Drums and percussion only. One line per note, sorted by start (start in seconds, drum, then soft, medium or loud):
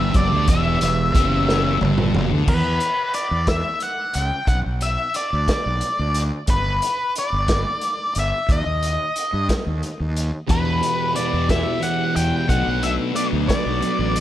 0.14 kick loud
0.14 closed hi-hat medium
0.48 kick loud
0.48 closed hi-hat medium
0.81 closed hi-hat medium
1.15 kick loud
1.15 closed hi-hat medium
1.49 snare medium
1.81 mid tom medium
1.98 mid tom medium
2.15 floor tom loud
2.48 kick medium
2.48 crash medium
2.80 closed hi-hat medium
3.14 closed hi-hat medium
3.47 kick medium
3.47 snare loud
3.47 closed hi-hat medium
3.80 closed hi-hat medium
4.14 closed hi-hat medium
4.47 kick medium
4.47 closed hi-hat medium
4.81 closed hi-hat medium
5.14 closed hi-hat medium
5.48 kick medium
5.48 snare loud
5.48 closed hi-hat medium
5.81 closed hi-hat medium
6.14 closed hi-hat medium
6.47 kick medium
6.47 closed hi-hat medium
6.82 closed hi-hat medium
7.15 closed hi-hat medium
7.48 kick medium
7.48 snare medium
7.48 closed hi-hat medium
7.81 closed hi-hat medium
8.15 closed hi-hat medium
8.49 kick loud
8.49 closed hi-hat medium
8.83 closed hi-hat medium
9.16 closed hi-hat medium
9.49 kick medium
9.49 snare loud
9.49 closed hi-hat medium
9.83 closed hi-hat medium
10.16 closed hi-hat medium
10.49 kick medium
10.49 closed hi-hat medium
10.83 closed hi-hat medium
11.16 closed hi-hat medium
11.49 kick medium
11.49 snare loud
11.49 closed hi-hat medium
11.82 closed hi-hat medium
12.16 closed hi-hat medium
12.49 kick medium
12.49 closed hi-hat medium
12.83 closed hi-hat medium
13.16 closed hi-hat medium
13.49 kick medium
13.49 snare loud
13.49 closed hi-hat medium
13.82 closed hi-hat medium
14.16 closed hi-hat medium